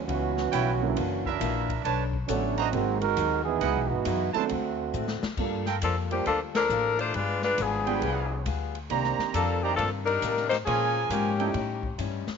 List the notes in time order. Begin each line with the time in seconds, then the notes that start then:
0.05 C#2 C#3 E3 G3 B3 C#4 F#4, ride
0.10 B3 E4
0.37 snare
0.51 B1 C#3 G3 B3 E4 B4 C#5 G5, hi-hat pedal, ride
0.82 D3 F#3 A#3 C#4 E4
0.95 F#1 F#2 E3 A#3 D4, ride
1.25 D4 E4 A#4 E5, kick
1.39 A#1 F#2 E3 A#3 D4, hi-hat pedal, ride
1.69 kick, ride
1.84 B1 B3 D4 A4 B4 C#5 A5, ride
2.13 kick
2.27 A1 D3 F#3 A3 B3 C#4 D4 F#4 A4 C#5, hi-hat pedal, ride
2.58 F#4 C5 D#5 A#5, ride
2.72 G#1 G#2 D#3 F#3 G#3 A#3 C4 D#4 F#4, ride
3.01 G#3 D#4 F#4 A#4, ride
3.17 D#2 G#2 F#3 C4 D#4, hi-hat pedal, ride
3.44 E3 B3 D#4 G#4
3.61 C#2 C#3 E3 F#3 G#3 B3 D#4 E4 F#4 B4 D#5 F#5, ride
3.76 B1
3.88 G#1 E3 B3 D#4 F#4
4.04 F#2 C#3 F#3 B3 E4, hi-hat pedal, ride
4.33 D#3 F#3 G#3 A3 B3 C4 D4 E4 A4 C5 A5, muted upright bass stroke, ride
4.48 D2 D3 A3 C4 F#4, ride
4.52 F#4
4.93 A2 D3 A3 C4 F#4, hi-hat pedal
5.08 snare
5.22 muted upright bass stroke, snare
5.37 G2 G3 A#3 D4 F4 A4, kick, crash
5.66 F4 A4 A#4 G5, snare
5.81 F2 F3 G3 A#3 D4 F4 A4, hi-hat pedal, ride
6.11 F3 G3 A#3 D4 F4 G4 C5, ride
6.26 D2 F3 G3 A#3 D4 F4 A4, ride
6.55 F3 D4 A4 A#4, snare, ride
6.69 A1 G3 A#3 F4 A4, hi-hat pedal
6.99 A3 D4 F4 C5, ride
7.14 G1 G3 G#3 B3 D4 F4 G#4 B4, ride
7.42 G#3 D4 F4 B4, snare
7.58 G#1 F3 G3 B3 D4 F4 G#4, hi-hat pedal, ride
7.86 G3 B3 D4 F4 G#4 B4 G5, ride
8.01 C2 G3 B3 F4 G#4, ride
8.45 D2 G3 B3 F4 G#4, hi-hat pedal, ride
8.75 ride
8.89 C2 C3 D#3 A#3 C4 D4 G4 C5 D5 A#5, ride
9.04 snare
9.18 muted upright bass stroke, snare
9.34 F2 C3 D#3 F3 A#3 D4 A4, hi-hat pedal, ride
9.62 D#3 A#3 D4 D#4 G4 C5 D5 A#5
9.76 G2 C3 D#3 F3 A#3 D4 A4, ride
9.80 A#3 D4
10.05 G3 D4 D#4 A#4, ride
10.22 A2 C3 D#3 A#3 D4, hi-hat pedal, ride
10.37 snare
10.49 A#3 D#4 G4 C5, snare, ride
10.65 A#2 F3 G#3 A#3 C#4 F4 G#4 A#4 C#5 G#5, ride
11.09 G#2 A#2 F3 G#3 A#3 C#4 G4, hi-hat pedal, ride
11.14 C#4
11.39 G3 A3 C#4 D#4 E4 A4 C#5 G5, ride
11.54 A2 G3 C#4 D#4, ride
11.83 kick
11.98 G2 A2 G3 C#4 D#4, hi-hat pedal, ride
12.27 muted upright bass stroke, snare